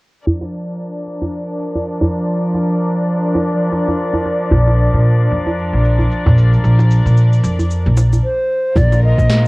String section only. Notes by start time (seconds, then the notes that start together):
0.26 F3 D4 A#4 D5
8.75 D3 A#3 F4 A#4